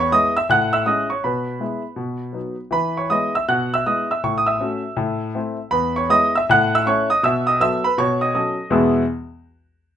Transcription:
Already playing: E2 B4 B5
0.00 C#5 C#6
0.12 G#3 B3 E4 D#5 D#6
0.37 E5 E6
0.49 A2 F#5 F#6
0.73 E5 E6
0.86 G#3 C#4 E4 D#5 D#6
1.10 C#5 C#6
1.24 B2 B4 B5
1.60 G#3 B3 E4
1.96 B2
2.33 F#3 B3 D#4
2.71 E3 B4 B5
2.97 C#5 C#6
3.10 G#3 B3 E4 D#5 D#6
3.35 E5 E6
3.48 B2 F#5 F#6
3.74 E5 E6
3.86 G#3 B3 E4 D#5 D#6
4.11 E5 E6
4.24 A2 C#6
4.38 D#6
4.46 E5 E6
4.60 A3 C#4 F#4
4.97 A2
5.35 A3 C4 E4
5.71 E2 B4 B5
5.96 C#5 C#6
6.09 G#3 B3 E4 D#5 D#6
6.35 E5 E6
6.50 A2 F#5 F#6
6.75 E5 E6
6.86 A3 C#4 E4 C#5 C#6
7.10 D#5 D#6
7.23 B2 E5 E6
7.47 D#5 D#6
7.60 F#3 B3 A4 E5 E6
7.84 B4 B5
7.98 B2 C#5 C#6
8.21 D#5 D#6
8.35 F#3 C#4 A4 D#5 D#6
8.70 E2 B2 G#3 B3 E4 G#4 E6

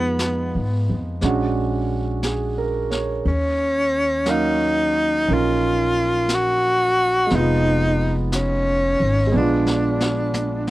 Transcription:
Already playing: F2 G#3 B3 D#4 F4
0.19 brush sweep, snare, hi-hat pedal
0.55 G#2
0.89 F2
1.21 A#1 G#3 C#4 D4 F#4, brush sweep, snare
2.23 G#4, brush sweep, snare, hi-hat pedal
2.58 A#4
2.90 C#5, snare
3.24 D#2, brush sweep
3.28 C#4
4.26 F#3 A#3 C#4 F5, brush sweep, snare, hi-hat pedal
4.30 D#4
5.27 A#1 C#4 D#4 A#4, brush sweep
5.34 F4
6.29 brush sweep, snare, hi-hat pedal
6.34 F#4
7.27 G#3, brush sweep, snare
7.31 F1 B3 D#4
7.36 D#4 F4
8.32 C#4, brush sweep, snare, hi-hat pedal
9.00 G#1
9.27 G#3
9.32 A#1 B3 D4
9.37 D4 F4
9.67 snare
10.01 snare
10.34 hi-hat pedal, high tom

